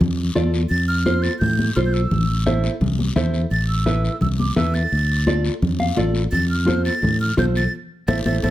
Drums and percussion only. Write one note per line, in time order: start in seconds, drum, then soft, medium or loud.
0.01 low conga medium
0.01 long guiro medium
0.35 high conga medium
0.35 short guiro medium
0.54 short guiro medium
0.71 long guiro medium
1.06 high conga medium
1.06 short guiro medium
1.24 short guiro medium
1.41 low conga medium
1.41 long guiro medium
1.59 high conga medium
1.76 high conga medium
1.76 short guiro medium
1.94 short guiro medium
2.11 low conga medium
2.11 long guiro medium
2.46 high conga medium
2.46 short guiro medium
2.64 short guiro medium
2.81 low conga medium
2.81 long guiro medium
2.99 high conga medium
3.16 high conga medium
3.16 low conga medium
3.16 short guiro medium
3.34 short guiro medium
3.51 long guiro medium
3.86 high conga medium
3.86 short guiro medium
4.05 short guiro medium
4.21 low conga medium
4.21 long guiro medium
4.39 high conga medium
4.56 high conga medium
4.56 low conga medium
4.56 short guiro medium
4.75 short guiro medium
4.93 long guiro medium
5.27 high conga medium
5.27 short guiro medium
5.45 short guiro medium
5.62 low conga medium
5.62 long guiro medium
5.79 high conga medium
5.97 high conga medium
5.97 short guiro medium
6.15 short guiro medium
6.32 low conga medium
6.32 long guiro medium
6.68 high conga medium
6.68 short guiro medium
6.85 short guiro medium
7.02 low conga medium
7.02 long guiro medium
7.38 high conga medium
7.38 low conga medium
7.38 short guiro medium
7.55 short guiro medium
8.08 high conga loud
8.08 long guiro loud
8.26 high conga loud
8.26 long guiro loud
8.44 high conga loud
8.44 long guiro loud